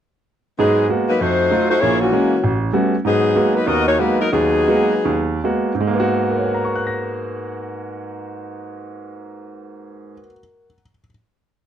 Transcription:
0.59 0.85 G#2 medium
0.59 0.88 F#3 medium
0.59 0.85 G#3 medium
0.59 0.87 B3 medium
0.59 0.87 D#4 medium
0.59 0.87 G#4 medium
0.89 1.10 G#3 soft
0.89 1.10 A#3 soft
0.89 1.10 B3 soft
0.89 1.10 F#4 medium
1.09 1.19 F#3 medium
1.09 1.19 A#3 medium
1.09 1.20 D#4 medium
1.09 1.19 B4 medium
1.20 1.47 F2 medium
1.20 1.69 A3 medium
1.20 1.69 D#4 medium
1.20 1.69 F#4 medium
1.20 1.69 C5 medium
1.51 1.71 F#3 soft
1.51 1.72 A3 soft
1.51 1.72 D#4 soft
1.51 1.72 F4 medium
1.70 1.81 A3 medium
1.70 1.81 D#4 medium
1.70 1.81 F#4 medium
1.70 1.81 C5 medium
1.80 2.08 A#1 medium
1.80 2.08 A#2 medium
1.80 2.00 A#3 medium
1.80 2.00 E4 medium
1.80 2.00 G#4 medium
1.80 2.00 C#5 medium
2.01 2.58 E3 medium
2.01 2.40 A#3 medium
2.01 2.58 C#4 medium
2.01 2.58 F#4 medium
2.12 2.33 G#3 soft
2.12 2.33 A#3 soft
2.12 2.33 C#4 medium
2.44 2.70 A1 medium
2.73 2.94 G3 soft
2.73 2.94 A3 soft
2.73 2.94 B3 soft
2.73 2.94 C#4 soft
2.73 2.94 F#4 medium
3.05 3.31 G#2 medium
3.05 3.52 F#3 medium
3.05 3.52 B3 medium
3.05 3.52 D#4 medium
3.05 3.52 G#4 medium
3.36 3.56 G#3 medium
3.36 3.56 A#3 soft
3.36 3.56 B3 soft
3.36 3.57 F#4 soft
3.55 3.67 F#3 medium
3.55 3.67 A#3 medium
3.55 3.67 D#4 medium
3.55 3.67 B4 medium
3.67 3.95 D#2 medium
3.67 3.87 B3 medium
3.67 3.86 F#4 medium
3.67 3.87 A#4 medium
3.67 3.87 D#5 medium
3.87 3.98 A#3 medium
3.87 3.98 D#4 medium
3.87 3.98 F#4 medium
3.87 3.98 C#5 medium
3.99 4.18 F#3 medium
3.99 4.21 G#3 medium
3.99 4.21 A#3 soft
3.99 4.20 A#3 medium
3.99 4.21 B3 soft
3.99 4.19 D#4 medium
3.99 4.21 F#4 medium
3.99 4.20 B4 medium
4.19 4.31 F#3 medium
4.19 4.31 B3 medium
4.19 4.31 D#4 medium
4.19 4.31 A#4 medium
4.32 4.62 D#2 medium
4.32 5.39 F#3 medium
4.32 5.39 B3 medium
4.32 5.39 D#4 medium
4.32 5.39 G#4 medium
4.68 4.92 G#3 medium
4.68 4.92 A#3 soft
4.68 4.92 B3 soft
4.68 4.92 F#4 medium
5.05 5.38 D#2 medium
5.44 5.71 G#3 soft
5.44 5.71 A#3 soft
5.44 5.71 B3 soft
5.44 5.72 F#4 medium
5.75 10.14 G#2 medium
5.81 10.20 G#3 medium
5.87 10.26 A#3 medium
5.94 10.33 B3 medium
6.00 10.39 F#4 medium
6.30 10.65 A#4 soft
6.37 10.72 C#5 soft
6.46 10.81 F#5 soft
6.54 10.89 A#5 soft
6.65 10.99 C#6 soft
6.76 11.04 F#6 soft
6.87 11.10 A#6 soft

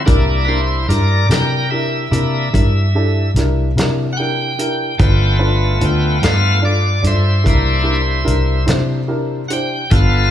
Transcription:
0.06 0.86 C2 medium
0.06 0.61 A#3 medium
0.06 0.61 D4 soft
0.06 0.37 D4 medium
0.06 0.38 E4 medium
0.06 0.47 E4 medium
0.06 0.38 G4 medium
0.06 0.37 A#4 medium
0.06 kick loud
0.06 closed hi-hat medium
0.45 0.79 D4 medium
0.45 0.79 E4 soft
0.45 0.86 E4 medium
0.45 0.79 G4 soft
0.45 0.79 A#4 medium
0.45 0.49 B4 medium
0.45 0.88 C5 medium
0.89 1.27 G2 medium
0.89 1.20 D4 medium
0.89 1.20 E4 soft
0.89 1.20 G4 soft
0.89 1.27 A#4 medium
0.89 1.20 A#4 medium
0.89 1.29 D5 medium
0.89 closed hi-hat medium
1.29 2.08 C3 medium
1.29 1.61 D4 soft
1.29 1.61 E4 soft
1.29 1.61 G4 soft
1.29 1.61 A#4 soft
1.29 1.69 A#4 medium
1.29 1.71 G5 medium
1.29 snare loud
1.29 closed hi-hat medium
1.71 2.02 D4 medium
1.71 2.02 E4 soft
1.71 2.02 G4 soft
1.71 2.02 A#4 medium
1.71 3.31 E5 medium
2.11 2.50 C3 medium
2.11 2.49 A#3 soft
2.11 2.43 D4 soft
2.11 2.49 D4 soft
2.11 2.49 E4 soft
2.11 2.43 E4 soft
2.11 2.43 G4 soft
2.11 2.43 A#4 medium
2.11 closed hi-hat medium
2.53 3.32 G2 medium
2.53 2.84 D4 medium
2.53 2.84 E4 soft
2.53 2.84 G4 soft
2.53 2.84 A#4 medium
2.53 kick medium
2.53 closed hi-hat medium
2.95 3.26 D4 medium
2.95 3.26 E4 medium
2.95 3.26 G4 medium
2.95 3.26 A4 medium
3.34 3.73 C2 medium
3.34 3.67 D4 medium
3.34 3.67 E4 medium
3.34 3.67 G4 medium
3.34 3.67 A#4 medium
3.34 snare soft
3.34 closed hi-hat medium
3.76 4.95 C3 medium
3.76 4.08 D4 medium
3.76 4.08 E4 medium
3.76 4.08 G4 medium
3.76 4.08 A#4 medium
3.76 snare loud
3.76 closed hi-hat medium
4.13 4.18 F#5 medium
4.17 4.49 D4 soft
4.17 4.49 E4 soft
4.17 4.49 G4 soft
4.17 4.49 A#4 medium
4.17 5.37 G5 loud
4.59 4.90 D4 medium
4.59 4.90 E4 medium
4.59 4.90 G4 medium
4.59 4.90 A#4 medium
4.59 closed hi-hat medium
4.98 5.78 G1 medium
4.98 6.18 A3 medium
4.98 6.19 B3 soft
4.98 5.30 D4 medium
4.98 5.30 F4 medium
4.98 6.19 F4 medium
4.98 5.31 A4 medium
4.98 5.31 B4 medium
4.98 kick loud
4.98 closed hi-hat medium
5.39 5.71 D4 medium
5.39 5.71 F4 medium
5.39 5.71 A4 medium
5.39 5.71 B4 medium
5.80 6.20 D2 medium
5.80 6.12 D4 medium
5.80 6.12 F4 soft
5.80 6.12 A4 medium
5.80 6.12 B4 medium
5.80 closed hi-hat medium
5.85 6.23 G5 medium
6.22 7.01 G2 medium
6.22 6.60 A3 soft
6.22 6.60 B3 soft
6.22 6.53 D4 soft
6.22 6.53 F4 soft
6.22 6.60 F4 soft
6.22 6.54 A4 soft
6.22 6.54 B4 medium
6.22 6.63 F5 medium
6.22 snare loud
6.22 closed hi-hat medium
6.62 6.94 D4 medium
6.62 6.94 F4 medium
6.62 6.94 A4 soft
6.62 6.94 D5 medium
6.62 7.04 D5 medium
7.03 7.42 G2 medium
7.03 7.35 D4 medium
7.03 7.35 F4 soft
7.03 7.35 A4 soft
7.03 7.35 D5 medium
7.03 closed hi-hat medium
7.07 8.66 C5 loud
7.07 8.66 E5 medium
7.43 8.24 C2 loud
7.43 8.01 A#3 medium
7.43 7.76 D4 medium
7.43 7.75 E4 soft
7.43 7.76 G4 soft
7.43 7.76 A#4 medium
7.43 kick medium
7.43 closed hi-hat medium
7.48 8.02 D4 soft
7.48 8.02 E4 medium
7.83 8.16 D4 medium
7.83 8.16 E4 soft
7.83 8.16 G4 medium
7.83 8.16 A#4 medium
8.24 8.65 C2 medium
8.24 8.57 D4 medium
8.24 8.57 E4 medium
8.24 8.57 G4 medium
8.24 8.57 A#4 medium
8.24 closed hi-hat medium
8.66 9.87 C3 medium
8.66 8.98 D4 medium
8.66 8.98 E4 medium
8.66 8.99 G4 medium
8.66 8.99 C5 medium
8.66 snare loud
8.66 closed hi-hat medium
9.08 9.40 D4 medium
9.08 9.40 E4 medium
9.08 9.40 G4 medium
9.08 9.40 A#4 medium
9.48 9.81 D4 medium
9.48 9.81 E4 soft
9.48 9.81 G4 medium
9.48 9.81 C5 medium
9.48 9.53 F#5 medium
9.48 closed hi-hat medium
9.53 9.92 G5 loud
9.90 10.31 G1 medium
9.90 10.31 B3 medium
9.90 10.22 B3 medium
9.90 10.23 D4 medium
9.90 10.31 F4 medium
9.90 10.23 F4 medium
9.90 10.31 A4 medium
9.90 10.22 A4 medium
9.90 10.31 F5 medium
9.90 kick loud
9.90 closed hi-hat medium

